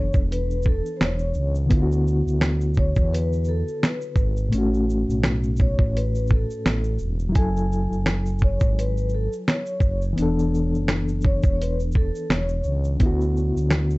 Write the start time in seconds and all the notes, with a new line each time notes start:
Already playing: F#1 E3 B3 D4 A4 C#5
0.13 E1, kick, shaker
0.32 B4, closed hi-hat, shaker
0.51 shaker
0.62 kick, shaker
0.67 A4
0.86 shaker
0.97 C5
1.01 E1 C#5, finger snap, snare, closed hi-hat, shaker
1.19 shaker
1.34 C#2, shaker
1.55 shaker
1.66 D3 B3
1.71 D2 E4, kick, closed hi-hat, shaker
1.76 F4
1.82 F#4
1.92 shaker
2.07 shaker
2.27 D2, shaker
2.41 finger snap, snare, closed hi-hat, shaker
2.61 shaker
2.74 kick, shaker
2.79 C#5
2.95 E2, kick, shaker
3.13 B4, closed hi-hat, shaker
3.33 shaker
3.44 shaker
3.49 A4
3.68 shaker
3.83 B4, finger snap, snare, closed hi-hat, shaker
4.01 shaker
4.16 G#1, kick, shaker
4.37 shaker
4.48 A2 A3
4.52 A1 C#4, closed hi-hat, shaker
4.58 F#4
4.74 shaker
4.90 shaker
5.09 B1, shaker
5.24 finger snap, snare, closed hi-hat, shaker
5.43 shaker
5.56 kick, shaker
5.61 C#5
5.79 A1, kick
5.97 B4, closed hi-hat, shaker
6.15 shaker
6.27 kick, shaker
6.32 A4
6.50 shaker
6.66 A1, finger snap, snare, closed hi-hat, shaker
6.84 shaker
6.99 E1, shaker
7.19 shaker
7.29 F#3 E4
7.35 F#1 A4 G#5, kick, closed hi-hat, shaker
7.57 shaker
7.72 shaker
7.91 F#1, shaker
8.06 finger snap, snare, closed hi-hat, shaker
8.26 shaker
8.39 kick, shaker
8.44 C#5
8.60 G#1, kick, shaker
8.79 B4, closed hi-hat, shaker
8.97 shaker
9.09 shaker
9.15 A4
9.33 shaker
9.48 C#5, finger snap, snare, closed hi-hat, shaker
9.66 shaker
9.80 F#1, kick, shaker
10.02 shaker
10.13 E3 B3
10.18 E1 D4, closed hi-hat, shaker
10.22 A4
10.39 shaker
10.55 shaker
10.74 F#1, shaker
10.88 finger snap, snare, closed hi-hat, shaker
11.08 shaker
11.21 kick, shaker
11.26 C#5
11.43 E1, kick, shaker
11.55 C#5
11.62 B4, closed hi-hat, shaker
11.80 shaker
11.92 kick, shaker
11.97 A4
12.15 shaker
12.30 E1 C#5, finger snap, snare, closed hi-hat, shaker
12.49 shaker
12.64 C#2, shaker
12.84 shaker
12.96 D3 B3, kick, closed hi-hat, shaker
13.00 D2 E4
13.06 F#4
13.21 shaker
13.37 shaker
13.57 D2, shaker
13.71 finger snap, snare, closed hi-hat, shaker
13.90 shaker